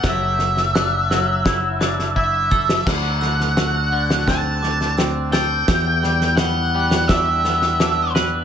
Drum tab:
CC |----------------|x---------------|----------------|
SD |o-ooo-o-o-oo---o|o-ooo--oo-ooo-o-|o-ooo--oo-ooo-o-|
BD |o-------o---o-o-|o-------o-------|o-------o-------|